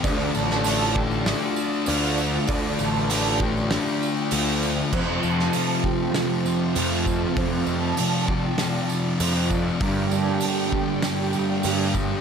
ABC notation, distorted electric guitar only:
X:1
M:4/4
L:1/8
Q:1/4=98
K:Dm
V:1 name="Distorted electric guitar" clef=bass
[D,A,D]2 [D,A,D] [A,D] [D,A,D]2 [D,A,D]2 | [D,A,D]2 [D,A,D] [A,D] [D,A,D]2 [D,A,D]2 | [K:F] [F,,C,F,]2 [F,,C,F,]2 [F,,C,F,] [C,F,] [F,,C,F,]2 | [F,,C,F,]2 [F,,C,F,]2 [F,,C,F,] [C,F,] [F,,C,F,]2 |
[G,,D,G,]2 [G,,D,G,]2 [G,,D,G,] [D,G,] [G,,D,G,]2 |]